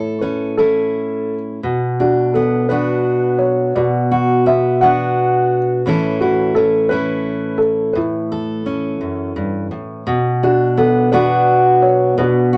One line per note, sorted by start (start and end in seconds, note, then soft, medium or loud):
0.00 1.60 A2 medium
0.00 0.54 E4 soft
0.00 1.60 A4 medium
0.00 0.24 C#5 medium
0.21 0.57 C#4 soft
0.21 0.58 B4 medium
0.57 1.60 C#4 soft
0.57 1.60 E4 soft
0.57 1.33 A4 medium
1.63 3.75 B2 medium
2.00 2.70 D4 soft
2.00 2.36 F#4 medium
2.34 2.69 B3 soft
2.34 2.70 A4 medium
2.69 4.46 B3 soft
2.69 3.72 D4 soft
2.69 4.10 F#4 soft
2.69 3.42 B4 medium
3.39 3.72 C#5 medium
3.75 5.86 B2 medium
3.75 4.78 F#4 soft
3.75 4.48 D5 medium
4.11 4.82 F#4 medium
4.46 4.82 B3 soft
4.46 4.83 E5 medium
4.81 5.87 B3 soft
4.81 5.83 D4 soft
4.81 5.87 F#4 medium
4.81 5.56 F#5 medium
5.86 7.91 A2 medium
5.86 10.07 E3 soft
5.86 6.56 C#4 soft
5.86 6.21 E4 medium
5.86 6.92 A4 medium
6.21 6.92 E4 soft
6.21 6.53 F#4 medium
6.55 6.91 C#4 soft
6.55 6.92 A4 medium
6.89 7.92 C#4 soft
6.89 7.92 E4 soft
6.89 7.92 A4 soft
6.89 7.56 B4 medium
7.58 7.95 A4 medium
7.93 9.00 A2 medium
7.93 9.68 E4 soft
7.93 9.66 B4 medium
8.32 10.03 A4 soft
8.66 10.03 C#4 soft
9.01 9.36 F#2 soft
9.36 9.71 G2 medium
9.71 10.07 A2 soft
10.07 12.16 B2 medium
10.43 11.13 D4 soft
10.43 10.79 F#4 medium
10.77 11.12 B3 soft
10.77 11.14 A4 medium
11.12 12.57 B3 medium
11.12 12.14 D4 medium
11.12 12.14 F#4 medium
11.12 12.52 F#4 medium
11.12 11.84 B4 medium
11.82 12.18 C#5 medium
12.18 12.57 B2 medium
12.18 12.57 D4 medium
12.18 12.57 F#4 medium
12.18 12.57 B4 medium
12.53 12.57 F#4 medium